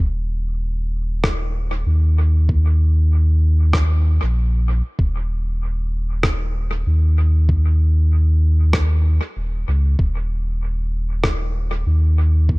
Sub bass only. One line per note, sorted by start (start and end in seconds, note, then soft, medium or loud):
0.00 1.84 D#1 medium
1.86 4.19 D#2 medium
4.23 4.82 A#1 medium
4.99 6.84 D#1 medium
6.87 9.20 D#2 medium
9.37 9.65 D#1 medium
9.68 9.96 C#2 medium
9.99 11.84 D#1 medium
11.87 12.59 D#2 medium